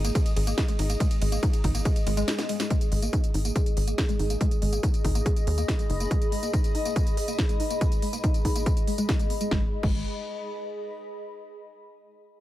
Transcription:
Already playing: analog synth bass G#1, ambient pad G#4 D#5 D#6
0.05 synth arpeggio sound A#3, closed hi-hat, ride, tambourine
0.15 synth arpeggio sound G#4, kick, closed hi-hat, ride, tambourine
0.26 closed hi-hat, ride, tambourine
0.36 analog synth bass G#1, synth arpeggio sound G#4, open hi-hat, ride
0.47 synth arpeggio sound A#3, closed hi-hat, ride, tambourine
0.58 synth arpeggio sound G#4, kick, snare, closed hi-hat, ride, tambourine
0.68 synth arpeggio sound G#3, closed hi-hat, ride, tambourine
0.79 analog synth bass G#1, synth arpeggio sound D#4, open hi-hat, ride
0.90 synth arpeggio sound A#3, closed hi-hat, ride, tambourine
1.00 synth arpeggio sound G#3, kick, closed hi-hat, ride, tambourine
1.11 closed hi-hat, ride, tambourine
1.21 analog synth bass G#1, synth arpeggio sound G#3, open hi-hat, ride
1.32 synth arpeggio sound A#3, closed hi-hat, ride, tambourine
1.43 synth arpeggio sound D#4, kick, closed hi-hat, ride, tambourine
1.53 closed hi-hat, ride, tambourine
1.64 analog synth bass G#1, synth arpeggio sound D#4, kick, open hi-hat, ride
1.75 synth arpeggio sound A#3, closed hi-hat, ride, tambourine
1.85 synth arpeggio sound G#4, kick, closed hi-hat, ride, tambourine
1.96 closed hi-hat, ride, tambourine
2.07 analog synth bass G#1, synth arpeggio sound G#3, open hi-hat, ride
2.17 synth arpeggio sound G#3, closed hi-hat, ride, tambourine
2.28 synth arpeggio sound G#3, snare, closed hi-hat, ride, tambourine
2.39 synth arpeggio sound B3, snare, closed hi-hat, ride, tambourine
2.49 synth arpeggio sound G#3, open hi-hat, ride
2.60 synth arpeggio sound G#3, snare, closed hi-hat, ride, tambourine
2.70 synth arpeggio sound G#3, ambient pad G#4, kick, closed hi-hat, tambourine
2.81 closed hi-hat, tambourine
2.92 analog synth bass G#1, synth arpeggio sound G#3, open hi-hat
3.02 synth arpeggio sound A#3, closed hi-hat, tambourine
3.13 synth arpeggio sound D#4, kick, closed hi-hat, tambourine
3.24 closed hi-hat, tambourine
3.34 analog synth bass G#1, synth arpeggio sound D#4, open hi-hat
3.42 synth arpeggio sound A#3, ambient pad D#5, closed hi-hat, tambourine
3.56 synth arpeggio sound G#4, kick, closed hi-hat, tambourine
3.66 closed hi-hat, tambourine
3.77 analog synth bass G#1, synth arpeggio sound G#4, open hi-hat
3.88 synth arpeggio sound A#3, closed hi-hat, tambourine
3.98 synth arpeggio sound G#4, kick, snare, closed hi-hat, tambourine
4.09 synth arpeggio sound G#3, closed hi-hat, tambourine
4.19 analog synth bass G#1, synth arpeggio sound D#4, open hi-hat
4.30 synth arpeggio sound A#3, closed hi-hat, tambourine
4.41 synth arpeggio sound G#3, ambient pad B5, kick, closed hi-hat, tambourine
4.51 closed hi-hat, tambourine
4.62 analog synth bass G#1, synth arpeggio sound G#3, open hi-hat
4.73 synth arpeggio sound A#3, closed hi-hat, tambourine
4.83 synth arpeggio sound D#4, kick, closed hi-hat, tambourine
4.94 closed hi-hat, tambourine
5.04 analog synth bass G#1, synth arpeggio sound D#4, kick, open hi-hat
5.15 synth arpeggio sound A#3, closed hi-hat, tambourine
5.26 synth arpeggio sound G#4, kick, closed hi-hat, tambourine
5.36 closed hi-hat, tambourine
5.47 analog synth bass D#2, synth arpeggio sound G#4, open hi-hat
5.58 synth arpeggio sound A#3, closed hi-hat, tambourine
5.68 synth arpeggio sound G#4, kick, snare, closed hi-hat, tambourine
5.79 synth arpeggio sound G#3, closed hi-hat, tambourine
5.90 analog synth bass F#1, synth arpeggio sound D#4, open hi-hat
6.00 synth arpeggio sound A#3, closed hi-hat, tambourine
6.11 synth arpeggio sound G#3, kick, closed hi-hat, tambourine
6.22 closed hi-hat, tambourine
6.32 synth arpeggio sound G#3, open hi-hat
6.43 synth arpeggio sound A#3, closed hi-hat, tambourine
6.53 synth arpeggio sound D#4, kick, closed hi-hat, tambourine
6.64 closed hi-hat, tambourine
6.75 synth arpeggio sound D#4, open hi-hat
6.85 synth arpeggio sound A#3, closed hi-hat, tambourine
6.96 synth arpeggio sound G#4, kick, closed hi-hat, tambourine
7.07 closed hi-hat, tambourine
7.17 synth arpeggio sound G#4, open hi-hat
7.28 synth arpeggio sound A#3, closed hi-hat, tambourine
7.39 synth arpeggio sound G#4, kick, snare, closed hi-hat, tambourine
7.49 synth arpeggio sound G#3, closed hi-hat, tambourine
7.60 synth arpeggio sound D#4, open hi-hat
7.70 synth arpeggio sound A#3, closed hi-hat, tambourine
7.81 synth arpeggio sound G#3, kick, closed hi-hat, tambourine
7.92 closed hi-hat, tambourine
8.02 synth arpeggio sound G#3, open hi-hat
8.13 synth arpeggio sound A#3, closed hi-hat, tambourine
8.24 synth arpeggio sound D#4, kick, closed hi-hat, tambourine
8.34 closed hi-hat, tambourine
8.45 synth arpeggio sound D#4, kick, open hi-hat
8.56 synth arpeggio sound A#3, closed hi-hat, tambourine
8.66 synth arpeggio sound G#4, kick, closed hi-hat, tambourine
8.77 closed hi-hat, tambourine
8.87 synth arpeggio sound G#3, open hi-hat
8.98 synth arpeggio sound G#3, closed hi-hat, tambourine
9.09 synth arpeggio sound B3, kick, snare, closed hi-hat, tambourine
9.19 synth arpeggio sound G#3, closed hi-hat, tambourine
9.30 synth arpeggio sound B3, open hi-hat
9.41 synth arpeggio sound G#3, closed hi-hat, tambourine
9.51 analog synth bass G#1, synth arpeggio sound G#3, ambient pad G#4, kick, snare
9.58 ambient pad D#5
9.64 ambient pad B5
9.83 analog synth bass G#1, synth arpeggio sound G#3, kick, crash

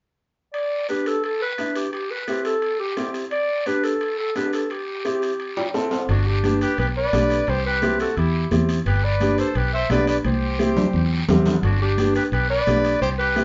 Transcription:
0.54 clarinet D5, high timbale, long guiro
0.89 upright piano B3 D4 G4, clarinet B4, high timbale, short guiro
1.06 clarinet A4, high timbale, short guiro
1.24 clarinet A4, high timbale, long guiro
1.42 clarinet B4
1.58 upright piano B3 D4 E4, high timbale, short guiro
1.75 clarinet G4, high timbale, short guiro
1.93 clarinet G4, high timbale, long guiro
2.10 clarinet B4
2.27 upright piano C4 E4 G4, high timbale, short guiro
2.45 clarinet A4, high timbale, short guiro
2.62 high timbale, long guiro
2.79 clarinet G4
2.97 upright piano C4 E4 G4, high timbale, low timbale, short guiro
3.14 high timbale, short guiro
3.31 clarinet D5, high timbale, long guiro
3.66 upright piano B3 D4 G4, clarinet B4, high timbale, short guiro
3.84 clarinet A4, high timbale, short guiro
4.01 high timbale, long guiro
4.19 clarinet A4
4.35 upright piano B3 D4 G4, clarinet B4, high timbale, low timbale, short guiro
4.53 clarinet A4, high timbale, short guiro
4.70 clarinet G4, high timbale, long guiro
5.05 upright piano C4 E4 G4, high timbale, short guiro
5.22 high timbale, short guiro
5.40 high timbale, long guiro
5.57 upright piano G5, high timbale
5.74 upright piano C4 E4 A4 E5, low timbale, short guiro
5.91 upright piano C5, low timbale, short guiro
6.09 fingered electric bass G1, trumpet D4, clarinet F#4, high conga, high timbale, long guiro
6.26 trumpet D4, clarinet G4
6.44 upright piano B3 D4 G4, high conga, high timbale, short guiro
6.61 trumpet G4, clarinet B4, high timbale, short guiro
6.78 fingered electric bass B1, trumpet G4, clarinet B4, high conga, high timbale, long guiro
6.97 trumpet B4, clarinet D5
7.13 fingered electric bass B1, upright piano B3 D4 G4, high conga, high timbale, low timbale, short guiro
7.30 high timbale, short guiro
7.47 fingered electric bass C2, trumpet G4, clarinet C5, high conga, high timbale, long guiro
7.66 trumpet G4, clarinet B4
7.82 upright piano C4 E4 G4, high conga, high timbale, short guiro
7.99 trumpet F#4, clarinet A4, high timbale, short guiro
8.17 fingered electric bass E2, trumpet E4, clarinet G4, high conga, high timbale, long guiro
8.51 fingered electric bass E2, upright piano C4 E4 G4, high conga, high timbale, short guiro
8.69 high timbale, short guiro
8.86 fingered electric bass G1, trumpet G4, clarinet B4, high conga, high timbale, long guiro
9.04 trumpet B4, clarinet D5
9.20 upright piano B3 D4 G4, high conga, high timbale, short guiro
9.38 trumpet A4, clarinet C5, high timbale, short guiro
9.55 fingered electric bass B1, trumpet G4, clarinet B4, high conga, high timbale, long guiro
9.74 trumpet C5, clarinet E5
9.90 fingered electric bass B1, upright piano B3 D4 G4, trumpet B4, clarinet D5, high conga, high timbale, low timbale, short guiro
10.07 trumpet B4, clarinet D5, high timbale, short guiro
10.24 fingered electric bass C2, trumpet G4, clarinet C5, high conga, high timbale, long guiro
10.59 upright piano C4 E4 G4, high conga, high timbale, short guiro
10.77 low conga, high timbale, short guiro
10.93 fingered electric bass E2, long guiro
11.28 fingered electric bass E2, upright piano C4 E4 G4, low conga, low timbale, short guiro
11.46 low conga, low timbale, short guiro
11.63 fingered electric bass G1, trumpet D4, clarinet F#4, high conga, high timbale, long guiro
11.81 trumpet D4, clarinet G4
11.98 upright piano B3 D4 G4, high conga, high timbale, short guiro
12.15 trumpet G4, clarinet B4, high timbale, short guiro
12.32 fingered electric bass B1, trumpet G4, clarinet B4, high conga, high timbale, long guiro
12.50 trumpet B4, clarinet D5
12.67 fingered electric bass B1, upright piano B3 D4 G4, high conga, high timbale, low timbale, short guiro
12.84 high timbale, short guiro
13.01 fingered electric bass C2, trumpet G4, clarinet C5, high conga, high timbale, long guiro
13.18 trumpet G4, clarinet B4
13.36 upright piano C4 E4 G4, high conga, high timbale, short guiro

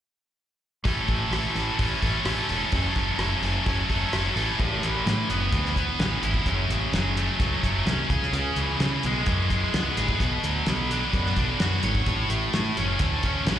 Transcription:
0.84 fingered electric bass A1, distorted electric guitar A2 E3 A3 C#4 A4, kick, open hi-hat
1.08 fingered electric bass A1, kick, open hi-hat
1.31 fingered electric bass A1, distorted electric guitar A2 E3 A3 C#4 A4, cross-stick, open hi-hat
1.55 fingered electric bass A1, open hi-hat
1.79 fingered electric bass A1, distorted electric guitar E3 A3 C#4 A4, kick, open hi-hat
2.01 fingered electric bass A1, distorted electric guitar A3 C#4 A4, kick, open hi-hat
2.25 fingered electric bass A1, distorted electric guitar E3 A3, cross-stick, open hi-hat
2.29 distorted electric guitar C#4 A4
2.49 fingered electric bass E1, distorted electric guitar A3 C#4 A4, open hi-hat
2.72 fingered electric bass F#1, distorted electric guitar F#2 C#3 F#3 A3 C#4, kick, open hi-hat
2.77 distorted electric guitar A4
2.95 fingered electric bass F#1, kick, open hi-hat
3.18 fingered electric bass F#1, distorted electric guitar F#2 C#3 F#3 A3, cross-stick, open hi-hat
3.22 distorted electric guitar C#4 A4
3.42 fingered electric bass F#1, open hi-hat
3.66 fingered electric bass F#1, distorted electric guitar F#3 A3 C#4 A4, kick, open hi-hat
3.89 fingered electric bass F#1, distorted electric guitar F#3 A3 C#4 A4, kick, open hi-hat
4.13 fingered electric bass F#1, distorted electric guitar F#3 A3 C#4 A4, cross-stick, open hi-hat
4.36 fingered electric bass A1, distorted electric guitar A2 E3 A3 C#4 A4, open hi-hat
4.59 fingered electric bass A1, distorted electric guitar A2, kick, crash
4.83 fingered electric bass A1, distorted electric guitar E3, closed hi-hat
5.06 fingered electric bass A2, distorted electric guitar E3, snare, closed hi-hat
5.29 fingered electric bass F#1, distorted electric guitar B3, closed hi-hat
5.53 fingered electric bass D2, distorted electric guitar E3, kick, closed hi-hat
5.66 snare
5.76 distorted electric guitar B3, kick, closed hi-hat
5.99 fingered electric bass A1, distorted electric guitar C#4, snare, closed hi-hat
6.22 fingered electric bass G#1, distorted electric guitar E4, closed hi-hat
6.34 kick
6.46 fingered electric bass F#1, distorted electric guitar F#2, kick, closed hi-hat
6.68 fingered electric bass A1, distorted electric guitar C#3, closed hi-hat
6.92 fingered electric bass F#1, distorted electric guitar F#3, snare, closed hi-hat
7.17 distorted electric guitar A3, closed hi-hat
7.40 fingered electric bass C#2, distorted electric guitar F#3, kick, closed hi-hat
7.63 fingered electric bass F#1, distorted electric guitar A3, kick, closed hi-hat
7.85 fingered electric bass C2, distorted electric guitar C#4, snare, closed hi-hat
8.10 fingered electric bass C#2, distorted electric guitar C#3, kick, closed hi-hat
8.23 snare
8.33 fingered electric bass C#2, distorted electric guitar C#3, closed hi-hat
8.56 fingered electric bass C#2, distorted electric guitar E3, closed hi-hat
8.80 fingered electric bass C#3, distorted electric guitar E3, snare, closed hi-hat
9.03 fingered electric bass B1, distorted electric guitar G#3, closed hi-hat
9.26 fingered electric bass F#2, distorted electric guitar E3, kick, closed hi-hat
9.50 distorted electric guitar G#3, kick, closed hi-hat
9.74 fingered electric bass C#2, distorted electric guitar B3, snare, closed hi-hat
9.97 fingered electric bass A1, distorted electric guitar G#4, closed hi-hat
10.09 kick
10.20 fingered electric bass B1, distorted electric guitar B2, kick, closed hi-hat
10.43 fingered electric bass D2, distorted electric guitar F#3, closed hi-hat
10.66 fingered electric bass B1, distorted electric guitar B3, snare, closed hi-hat
10.91 distorted electric guitar D4, closed hi-hat
11.13 fingered electric bass F#2, distorted electric guitar B3, kick, closed hi-hat
11.26 snare
11.36 fingered electric bass B1, distorted electric guitar D4, kick, closed hi-hat
11.60 fingered electric bass F#2, distorted electric guitar F#4, snare, closed hi-hat
11.83 fingered electric bass G#1, distorted electric guitar C#5, closed hi-hat
11.95 kick
12.06 fingered electric bass A1, distorted electric guitar A2, kick, closed hi-hat
12.30 fingered electric bass A1, distorted electric guitar A3, closed hi-hat
12.53 fingered electric bass A2, distorted electric guitar A3, snare, closed hi-hat
12.77 fingered electric bass F#1, distorted electric guitar C#4, closed hi-hat
12.99 fingered electric bass D2, distorted electric guitar A3, kick, closed hi-hat
13.23 distorted electric guitar C#4, kick, closed hi-hat
13.45 fingered electric bass A1, distorted electric guitar B3, snare, closed hi-hat

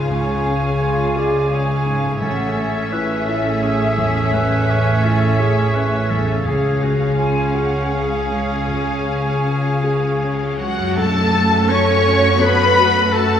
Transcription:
Already playing: double bass section C#2, grand piano G#2 C#4 F4 G#4, harp C#3, viola section C#3, cello section C#3, french horn section G#3 G#4, clarinet F4, violin section G#4 F5
0.10 grand piano C#2, oboe C#5, flute section G#5
0.46 grand piano C#4
0.81 grand piano F4, clarinet F4, oboe C#5
1.16 grand piano G#4, oboe D5
1.51 grand piano C#4, clarinet G#4, oboe C#5
1.86 grand piano G#2
2.04 harp A2
2.08 harp A3
2.12 harp C#4
2.17 harp E4, clarinet A4, oboe C#5, violin section E5
2.22 grand piano A1, double bass section A1, cello section A2, french horn section A3 C#4, viola section C#4, violin section G#4, flute section F#5
2.57 grand piano C#4, flute section E5
2.92 grand piano E4, clarinet B4, oboe E5
3.26 grand piano E4, clarinet A4
3.62 grand piano C#4, clarinet G#4, oboe E5
3.98 grand piano E2
4.33 grand piano A1, clarinet B4, oboe E5
4.68 grand piano C#4, oboe C#5
5.04 grand piano E4, clarinet A4
5.40 grand piano G#4, clarinet G#4
5.75 grand piano C#4, clarinet B4
6.10 grand piano E2, clarinet A4
6.26 harp C#3
6.35 harp C#4
6.40 harp G#4
6.45 double bass section C#2, grand piano C#2, cello section C#3, viola section C#4, french horn section C#4 G#4, violin section G#4 F5, clarinet G#4, flute section F5
6.81 grand piano C#4, clarinet F#4
7.17 clarinet F4, grand piano F4, oboe C#5, flute section G#5
7.54 grand piano G#4, flute section F#5
7.91 grand piano C#4, clarinet G#4, flute section F5
8.29 grand piano G#3, flute section F5
8.67 grand piano C#2, clarinet G#4, oboe C#5, flute section G#5
9.07 grand piano C#4
9.46 grand piano F4
9.84 grand piano G#4
10.22 grand piano C#4
10.58 cello section F#3, grand piano G#3, violin section F#4 F#5, clarinet F#4, flute section F#4
10.78 harp F#2
10.82 harp A3
10.86 harp C#4
10.91 harp F#4
10.96 grand piano F#2, double bass section F#2, viola section A3 F#4, cello section A3, violin section A4 A5, clarinet A4, flute section A4, tam-tam
11.69 cello section C#4, grand piano C#4, french horn section A4, clarinet C#5, flute section C#5, violin section C#5 C#6
12.40 cello section B3, grand piano F#4 A4, french horn section A4, flute section B4, violin section B4 B5, clarinet B4
12.79 french horn section F#4
13.12 cello section A3, flute section A4, clarinet A4, violin section A4 A5, french horn section A4

